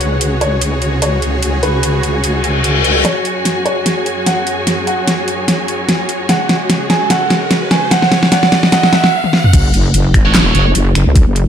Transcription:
Already playing: wobble bass C#2, supersaw synth C#3 F#4 G#4, string section F#4 B4 C#5 F#5, grand piano C#5
0.00 string section G#5, closed hi-hat
0.09 string section G#4
0.21 closed hi-hat
0.41 grand piano C#5, closed hi-hat
0.61 closed hi-hat
0.82 closed hi-hat
1.02 grand piano C#5, closed hi-hat
1.22 closed hi-hat
1.43 closed hi-hat
1.63 grand piano B4, closed hi-hat
1.83 closed hi-hat
2.03 closed hi-hat
2.24 closed hi-hat, reverse cymbal
2.44 closed hi-hat
2.64 closed hi-hat
2.84 closed hi-hat
3.05 supersaw synth F#2 F#3 G#4 C#5, grand piano C#5, snare, closed hi-hat, riser
3.25 closed hi-hat
3.45 snare, closed hi-hat
3.65 grand piano C#5, closed hi-hat
3.86 snare, closed hi-hat
4.06 closed hi-hat
4.26 grand piano F#5, snare, closed hi-hat
4.47 closed hi-hat
4.67 snare, closed hi-hat
4.87 grand piano F#5, closed hi-hat
5.08 snare, closed hi-hat
5.28 closed hi-hat
5.48 snare, closed hi-hat
5.68 closed hi-hat
5.89 snare, closed hi-hat
6.09 closed hi-hat
6.29 supersaw synth C#3 G#3 F#4, grand piano F#5, snare, closed hi-hat
6.49 snare, closed hi-hat
6.70 snare, closed hi-hat
6.90 grand piano G#5, snare, closed hi-hat
7.10 grand piano F#5, snare, closed hi-hat
7.30 snare, closed hi-hat
7.51 snare, closed hi-hat
7.71 grand piano G#5, snare, closed hi-hat
7.91 grand piano F#5, snare, closed hi-hat
8.02 snare
8.12 snare, closed hi-hat
8.23 snare
8.32 grand piano F#5, snare, closed hi-hat
8.43 snare
8.52 snare, closed hi-hat
8.63 snare
8.72 grand piano F#5, snare, closed hi-hat
8.83 snare
8.93 grand piano F#5, snare, closed hi-hat
9.04 snare
9.24 high tom
9.33 snare
9.44 mid tom
9.53 wobble bass F#1, kick, closed hi-hat, crash, sub drop
9.74 wobble bass F#1, closed hi-hat
9.94 wobble bass F#1, closed hi-hat
10.14 wobble bass G#1, finger snap, kick, closed hi-hat
10.25 distorted electric guitar F#4 A4 C#5
10.35 snare, clap, closed hi-hat
10.55 wobble bass F#1, distorted electric guitar F#4 A4 C#5, closed hi-hat
10.75 wobble bass F#1, closed hi-hat
10.95 wobble bass F#1, finger snap, closed hi-hat
11.06 wobble bass C#2
11.16 kick, closed hi-hat
11.27 wobble bass F#1
11.36 closed hi-hat

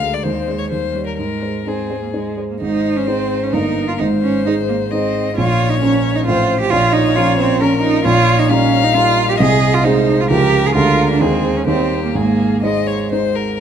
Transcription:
Already playing: grand piano D2, cello G#3, violin F5
0.02 grand piano G#3 A#4
0.14 violin D5
0.23 grand piano D#2, cello G#3, violin C5
0.48 grand piano G#3 C5
0.59 violin C#5
0.70 grand piano D#2, cello G3, violin C5
0.95 grand piano G3 C#5
1.06 violin A#4
1.17 grand piano G#2, cello G#3, violin A#4
1.42 grand piano G#3 C5
1.66 cello C4, grand piano D#4 C5, violin G#4
1.91 grand piano G#3 C5
2.02 cello A#3
2.13 cello G#3, grand piano D#4 C5
2.37 grand piano G#3 C5
2.51 cello A#3
2.61 grand piano G#1 G#2, cello D#4, violin C5
2.96 cello C#4
3.07 grand piano G#3 D#4 C5, cello C4
3.43 cello C#4
3.52 grand piano G1 G2 A#3 D#4 A#4, cello D#4, violin A#4
3.88 cello F4
3.99 grand piano G#1 G#2, cello D#4, violin C5
4.22 cello C#4
4.46 grand piano G#3 D#4 C5, cello D#4
4.68 cello A#3
4.91 grand piano G#3 D#4 C5, cello C4, violin D#5
5.36 grand piano A#1 A#2, cello F4, violin C#5
5.69 cello D#4
5.81 grand piano F3 C#4 A#4, cello C#4
6.15 cello D#4
6.26 grand piano A1 A2 F3 C4 C5, cello F4, violin C5
6.60 cello G4
6.71 grand piano A#1 A#2, cello F4, violin C#5
6.93 cello D#4
7.16 grand piano F3 C#4 A#4, cello F4
7.38 cello C4
7.61 grand piano F3 C#4 A#4, cello C#4, violin A#4
7.82 cello D#4
8.05 grand piano A#1 A#2, cello F4, violin C#5
8.39 cello D#4
8.50 grand piano G3 D#4 A#4, cello C#4, violin F5
8.84 cello D#4
8.94 grand piano G3 D#4 A#4, cello F4
9.29 cello G4
9.38 grand piano C2 C3, cello G#4, violin D#5
9.74 cello F4
9.84 grand piano G#3 D#4 G#4, cello D#4, violin C5
10.20 cello F4
10.29 grand piano C#2 C#3 F3 F4 A#4, cello G4, violin A#4
10.66 cello G#4
10.75 grand piano D2 D3 G#3 F4 A#4, cello F4, violin A#4
11.10 cello D4
11.20 grand piano D#2 D#3 G#3 D#4 C5, cello C4, violin G#4
11.57 cello C#4
11.67 grand piano D#2 D#3 G3 D#4 C#5, cello C4, violin G4
12.05 cello A#3
12.14 grand piano G#1 G#2, cello A#3, violin G#4
12.62 grand piano G#3 D#4 C5, cello G#3, violin D#5
12.87 violin C#5
13.12 grand piano G#3 D#4 C5, violin C5
13.36 violin A#4

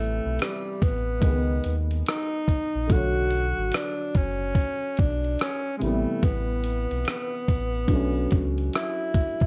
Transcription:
Already playing: sub bass A1, upright piano C3 E3 G3 B3, tenor saxophone A3
0.25 sub bass B1
0.39 tenor saxophone G3, cross-stick, closed hi-hat
0.82 sub bass A1, tenor saxophone B3, kick, closed hi-hat
1.21 sub bass C#2, upright piano D#3 G#3, kick, closed hi-hat
1.26 upright piano B3 D#4
1.64 sub bass D#2, closed hi-hat
1.91 closed hi-hat
2.06 tenor saxophone D#4, cross-stick, closed hi-hat
2.48 kick, closed hi-hat
2.75 sub bass A#1
2.87 sub bass B1, upright piano D3 F#3, kick, closed hi-hat
2.92 upright piano A3 C#5, tenor saxophone F#4
3.31 closed hi-hat
3.58 sub bass G#1
3.72 tenor saxophone D4, cross-stick, closed hi-hat
4.15 sub bass F#1, tenor saxophone C#4, kick, closed hi-hat
4.55 kick, closed hi-hat
4.97 sub bass B1, tenor saxophone D4, kick, closed hi-hat
5.24 closed hi-hat
5.39 tenor saxophone C#4, cross-stick, closed hi-hat
5.78 upright piano C3, tenor saxophone G#3, closed hi-hat
5.82 sub bass A1, upright piano E3 G3, tenor saxophone A3
5.87 upright piano B3
6.23 sub bass A1, tenor saxophone B3, kick, closed hi-hat
6.64 closed hi-hat
6.91 sub bass B1, closed hi-hat
7.05 cross-stick, closed hi-hat
7.48 sub bass A1, kick, closed hi-hat
7.88 sub bass B1, upright piano F#3 D4, kick, closed hi-hat
7.93 upright piano A3 C#4
8.31 sub bass C#2, kick, closed hi-hat
8.58 closed hi-hat
8.73 tenor saxophone E4, cross-stick, closed hi-hat
9.15 kick, closed hi-hat
9.40 sub bass A#1, kick, closed hi-hat

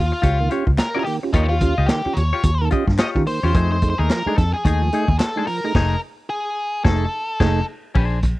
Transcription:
Already playing: picked electric bass D#2, lead electric guitar F4
0.12 muted clean electric guitar stroke
0.22 picked electric bass C#2, clean electric guitar F4 G4 C#5, tonewheel organ F4 G4, kick, closed hi-hat
0.40 tonewheel organ D#3 A#3, muted clean electric guitar stroke
0.50 tonewheel organ C#4 F4 G4, clean electric guitar F4 G4 C#5, closed hi-hat
0.67 picked electric bass C#2, muted clean electric guitar stroke, kick
0.78 lead electric guitar A#4, muted clean electric guitar stroke, snare, clap, closed hi-hat
0.95 tonewheel organ C#4 F4 G4, clean electric guitar F4 G4 D#5
0.99 lead electric guitar A#4
1.05 tonewheel organ D#3 A#3, lead electric guitar G4, muted clean electric guitar stroke, open hi-hat
1.23 tonewheel organ C#4 F4 G4, muted clean electric guitar stroke
1.33 picked electric bass D#2, tonewheel organ D#3 A#3, lead electric guitar D#4, clean electric guitar F4 G4 C#5, kick, closed hi-hat
1.49 lead electric guitar F4, tonewheel organ F4 G4
1.61 tonewheel organ C#4 F4 G4, muted clean electric guitar stroke, kick, closed hi-hat
1.78 picked electric bass C#2, clean electric guitar F4 G4 D#5
1.86 tonewheel organ D#3 A#3, lead electric guitar G4, snare, clap, closed hi-hat
2.05 tonewheel organ C#4 F4 G4, muted clean electric guitar stroke, muted picked electric bass stroke
2.13 picked electric bass D#2, tonewheel organ F4 G4, lead electric guitar C#5, closed hi-hat
2.33 clean electric guitar F4 G4 C#5
2.43 picked electric bass D#2, tonewheel organ F4 G4, muted clean electric guitar stroke, kick, closed hi-hat
2.61 tonewheel organ D#3 A#3
2.71 tonewheel organ C#4 F4 G4, clean electric guitar F4 G4 D#5, kick, closed hi-hat
2.87 picked electric bass G2, muted clean electric guitar stroke, kick, snare
2.98 clean electric guitar F4 G4 C#5, lead electric guitar D#5, snare, clap, closed hi-hat
3.16 picked electric bass D#3, tonewheel organ C#4 F4 G4, kick
3.26 tonewheel organ D#3 A#3, lead electric guitar C5, muted clean electric guitar stroke, open hi-hat
3.43 picked electric bass E2, tonewheel organ C#4 F4 G4, clean electric guitar F4 G4 C#5
3.54 picked electric bass F2, tonewheel organ F3, clean electric guitar A3 D#4 G#4, kick, closed hi-hat
3.72 tonewheel organ D#4 G#4, lead electric guitar C5
3.82 tonewheel organ A3 D#4 G#4, muted clean electric guitar stroke, kick, closed hi-hat
3.90 lead electric guitar C5
3.98 picked electric bass D#2, clean electric guitar A3 D#4 G#4, lead electric guitar A#4
4.10 tonewheel organ F3, muted clean electric guitar stroke, snare, clap, closed hi-hat
4.26 tonewheel organ A3 D#4 G#4, clean electric guitar A3 D#4 A4, muted picked electric bass stroke
4.37 picked electric bass F2, tonewheel organ D#4 G#4, lead electric guitar A4, muted clean electric guitar stroke, kick, snare, closed hi-hat
4.54 lead electric guitar G#4, muted clean electric guitar stroke
4.65 picked electric bass D#2, clean electric guitar A3 D#4 G#4, tonewheel organ D#4 G#4, kick, closed hi-hat
4.82 tonewheel organ F3, muted clean electric guitar stroke
4.92 tonewheel organ A3 D#4 G#4, clean electric guitar A3 D#4 G#4, closed hi-hat
5.08 picked electric bass D#2, muted clean electric guitar stroke, kick
5.19 lead electric guitar A4, muted clean electric guitar stroke, snare, clap, closed hi-hat
5.36 tonewheel organ A3 D#4 G#4, clean electric guitar A3 D#4 A4
5.47 tonewheel organ F3, lead electric guitar A#4, muted clean electric guitar stroke, open hi-hat
5.64 tonewheel organ A3 D#4 G#4, muted clean electric guitar stroke
5.75 picked electric bass F1, clean electric guitar A3 D#4 G#4, kick, snare, crash
6.30 lead electric guitar G#4
6.84 picked electric bass F1, clean electric guitar A3 D#4 G#4, tonewheel organ D#4 G#4, lead electric guitar A4, kick, snare
7.40 picked electric bass F1, tonewheel organ A3 D#4 G#4, clean electric guitar A3 D#4 G#4, kick, snare, crash
7.95 picked electric bass A#1, clean electric guitar D4 G#4 C5, kick, crash
8.23 muted clean electric guitar stroke, kick, closed hi-hat

